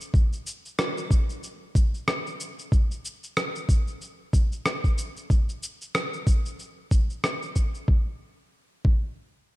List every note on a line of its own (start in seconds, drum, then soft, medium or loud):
0.01 shaker soft
0.14 kick loud
0.14 shaker soft
0.33 shaker soft
0.47 shaker medium
0.65 shaker soft
0.79 cross-stick medium
0.79 shaker soft
0.97 shaker soft
1.11 kick medium
1.11 shaker medium
1.30 shaker soft
1.43 shaker soft
1.75 kick medium
1.75 shaker medium
1.94 shaker soft
2.08 cross-stick medium
2.08 shaker soft
2.27 shaker soft
2.40 shaker medium
2.59 shaker soft
2.72 kick medium
2.72 shaker soft
2.91 shaker soft
3.05 shaker medium
3.24 shaker soft
3.37 cross-stick medium
3.37 shaker soft
3.56 shaker soft
3.69 kick medium
3.69 shaker medium
3.88 shaker soft
4.01 shaker soft
4.33 kick medium
4.33 shaker medium
4.52 shaker soft
4.66 cross-stick medium
4.66 shaker soft
4.84 kick medium
4.84 shaker soft
4.98 shaker medium
5.17 shaker soft
5.30 kick loud
5.30 shaker soft
5.49 shaker soft
5.63 shaker medium
5.81 shaker soft
5.95 cross-stick medium
5.95 shaker soft
6.13 shaker soft
6.27 kick medium
6.27 shaker medium
6.46 shaker soft
6.59 shaker soft
6.91 kick medium
6.91 shaker medium
7.10 shaker soft
7.24 cross-stick medium
7.24 shaker soft
7.42 shaker soft
7.56 kick medium
7.56 shaker medium
7.75 shaker soft
7.88 kick medium
8.85 kick loud